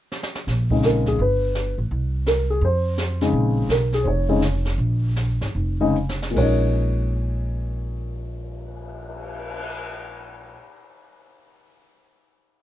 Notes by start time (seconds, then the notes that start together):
0.12 snare
0.23 snare
0.35 snare
0.47 A#1, brush sweep, snare
0.70 C#3 G#3 C4 D#4, kick
0.83 A#4, snare, hi-hat pedal
1.06 G#4, kick, snare
1.19 G1 B4, brush sweep
1.55 snare, hi-hat pedal
1.78 A1
1.91 C2, brush sweep
2.26 A#4, snare, hi-hat pedal
2.50 G#4
2.61 F2 C5, brush sweep
2.98 snare, hi-hat pedal
3.21 C#3 G#3 C4 D#4, snare
3.33 A#1, brush sweep
3.68 B1 A#4, snare, hi-hat pedal
3.92 G#4, snare
4.03 F1 C5, brush sweep
4.07 C#5
4.29 C#3 G#3 C4 D#4
4.42 snare, hi-hat pedal
4.65 snare
4.78 A#1, brush sweep
5.16 snare, hi-hat pedal
5.41 G#1, snare
5.55 F1, brush sweep
5.80 C#3 G#3 C4 D#4
5.95 hi-hat pedal
6.09 snare
6.22 snare
6.30 A#2 G#3
6.36 A#1 A#3 C#4 C#5, kick, crash
6.42 D#4
6.63 cymbal swell